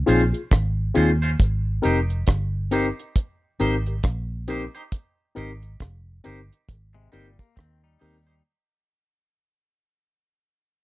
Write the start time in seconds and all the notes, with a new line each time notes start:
0.06 A#1 C4 C#4 D#4 F4 G#4 C5, closed hi-hat
0.33 F4 G#4, closed hi-hat
0.51 G#1, kick, cross-stick, closed hi-hat
0.94 D#2 C4 C#4 D#4 F4 G#4 C5, closed hi-hat
1.22 C#4 F4 C5, closed hi-hat
1.40 G#1, kick, closed hi-hat
1.82 F1 C4 D#4 G4 A#4 C5, closed hi-hat
2.10 closed hi-hat
2.27 G1, kick, cross-stick, closed hi-hat
2.71 C4 D#4 G4 A#4 C5, closed hi-hat
2.99 closed hi-hat
3.16 kick, closed hi-hat
3.60 G#1 C4 D#4 G4 A#4 C5, closed hi-hat
3.86 G4 A#4, closed hi-hat
4.03 A#1, kick, cross-stick, closed hi-hat
4.48 C4 D#4 G4 A#4 C5, closed hi-hat
4.75 D#4 G4 C5, closed hi-hat
4.92 kick, closed hi-hat
5.35 G#1 C4 D#4 G4 A#4 C5, closed hi-hat
5.62 closed hi-hat
5.80 F1, kick, cross-stick, closed hi-hat
6.24 G1 C4 D#4 G4 A#4 C5, closed hi-hat
6.52 closed hi-hat
6.69 G#1, kick, closed hi-hat
6.94 C3 G#3
7.12 G1 A#2 G3 C4 D#4 G4 A#4 C5, closed hi-hat
7.39 A#3 G4 A#4, kick, closed hi-hat
7.56 D#2 D#3 C4, kick, cross-stick, closed hi-hat
7.84 G3 D#4
7.99 D#2 C4 D#4 G4 A#4 C5, open hi-hat
8.27 D#4 G4 C5, closed hi-hat